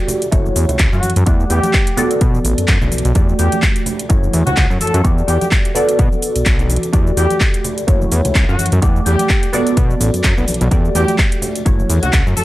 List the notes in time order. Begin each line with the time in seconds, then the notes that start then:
Already playing: A3 F#4 G4 D5
0.08 open hi-hat, tambourine, low conga, shaker
0.21 closed hi-hat, tambourine, shaker
0.32 F#1 A3 E4 F#4 C#5, kick, closed hi-hat, shaker
0.46 high conga, shaker
0.56 E2, open hi-hat, tambourine, shaker
0.69 C#2, closed hi-hat, tambourine, low conga, shaker
0.79 C#2, kick, clap, closed hi-hat, shaker
0.93 F#2 F#4, shaker
1.03 F#2, open hi-hat, tambourine, high conga, shaker
1.10 closed hi-hat
1.16 F#2, closed hi-hat, tambourine, shaker
1.26 E2 A3 G4 D5 F#5, kick, closed hi-hat, shaker
1.40 shaker
1.50 E2 G4, open hi-hat, tambourine, shaker
1.63 closed hi-hat, tambourine, high conga, shaker
1.73 kick, clap, tambourine, shaker
1.87 closed hi-hat, shaker
1.97 B3 F#4 A4 D5, open hi-hat, tambourine, low conga, shaker
2.11 closed hi-hat, tambourine, shaker
2.21 B2, kick, closed hi-hat, shaker
2.34 high conga, shaker
2.45 A1, open hi-hat, tambourine, shaker
2.58 F#2, closed hi-hat, tambourine, shaker
2.68 F#2, kick, clap, closed hi-hat, shaker
2.82 B1, low conga, shaker
2.91 B1, open hi-hat, tambourine, high conga, shaker
2.98 closed hi-hat
3.05 B1, closed hi-hat, tambourine, shaker
3.15 E2 A3 F#4 G4 D5, kick, closed hi-hat, tambourine, shaker
3.29 shaker
3.39 E2 G4, open hi-hat, tambourine, shaker
3.52 closed hi-hat, tambourine, high conga, shaker
3.62 kick, clap, shaker
3.76 closed hi-hat, shaker
3.86 open hi-hat, tambourine, low conga, shaker
3.99 closed hi-hat, tambourine, shaker
4.09 F#1 A3 E4 F#4 C#5, kick, closed hi-hat, tambourine, shaker
4.23 high conga, shaker
4.33 E2, open hi-hat, tambourine, shaker
4.46 C#2 F#4, closed hi-hat, tambourine, low conga, shaker
4.57 C#2, kick, clap, closed hi-hat, tambourine, shaker
4.70 F#2, shaker
4.80 F#2 A4, open hi-hat, tambourine, high conga, shaker
4.87 closed hi-hat
4.94 F#2, closed hi-hat, tambourine, shaker
5.04 E2 A3 F#4 G4 D5, kick, closed hi-hat, shaker
5.18 shaker
5.28 E2 G4, open hi-hat, tambourine, shaker
5.41 G4, closed hi-hat, tambourine, high conga, shaker
5.51 kick, clap, tambourine, shaker
5.65 closed hi-hat, shaker
5.75 B3 F#4 A4 D5, open hi-hat, tambourine, low conga, shaker
5.89 closed hi-hat, tambourine, shaker
5.99 B2, kick, closed hi-hat, tambourine, shaker
6.12 high conga, shaker
6.22 open hi-hat, tambourine, shaker
6.35 B1, closed hi-hat, tambourine, shaker
6.46 B1, kick, clap, closed hi-hat, shaker
6.59 closed hi-hat, low conga, shaker
6.69 open hi-hat, tambourine, high conga, shaker
6.76 closed hi-hat
6.83 closed hi-hat, tambourine, shaker
6.93 E2 A3 F#4 G4 D5, kick, closed hi-hat, shaker
7.07 shaker
7.17 E2 G4, open hi-hat, tambourine, shaker
7.30 closed hi-hat, tambourine, high conga, shaker
7.40 kick, clap, tambourine, shaker
7.54 closed hi-hat, shaker
7.64 open hi-hat, tambourine, low conga, shaker
7.78 closed hi-hat, tambourine, shaker
7.87 F#1 A3 E4 F#4 C#5, kick, closed hi-hat, shaker
8.01 high conga, shaker
8.12 E2, open hi-hat, tambourine, shaker
8.25 C#2, closed hi-hat, tambourine, low conga, shaker
8.35 C#2, kick, clap, closed hi-hat, shaker
8.48 F#2 F#4, shaker
8.59 F#2, open hi-hat, tambourine, high conga, shaker
8.66 closed hi-hat
8.72 F#2, closed hi-hat, tambourine, shaker
8.82 E2 A3 G4 D5 F#5, kick, closed hi-hat, shaker
8.96 shaker
9.06 E2 G4, open hi-hat, tambourine, shaker
9.19 closed hi-hat, tambourine, high conga, shaker
9.29 kick, clap, shaker
9.43 closed hi-hat, shaker
9.53 B3 F#4 A4 D5, open hi-hat, tambourine, low conga, shaker
9.67 closed hi-hat, tambourine, shaker
9.77 B2, kick, closed hi-hat, shaker
9.89 high conga, shaker
10.01 A1, open hi-hat, tambourine, shaker
10.14 F#2, closed hi-hat, tambourine, shaker
10.24 F#2, kick, clap, closed hi-hat, shaker
10.38 B1, low conga, shaker
10.48 B1, open hi-hat, tambourine, high conga, shaker
10.54 closed hi-hat
10.61 B1, closed hi-hat, tambourine, shaker
10.71 E2 A3 F#4 G4 D5, kick, closed hi-hat, shaker
10.85 shaker
10.95 E2 G4, open hi-hat, tambourine, shaker
11.08 closed hi-hat, tambourine, high conga, shaker
11.18 kick, clap, tambourine, shaker
11.32 closed hi-hat, shaker
11.42 open hi-hat, tambourine, low conga, shaker
11.55 closed hi-hat, tambourine, shaker
11.65 F#1 A3 E4 F#4 C#5, kick, closed hi-hat, shaker
11.79 high conga, shaker
11.90 E2, open hi-hat, tambourine, shaker
12.03 C#2 F#4, closed hi-hat, tambourine, low conga, shaker
12.13 C#2, kick, clap, closed hi-hat, tambourine, shaker
12.27 F#2, shaker
12.37 F#2 A4, open hi-hat, tambourine, high conga, shaker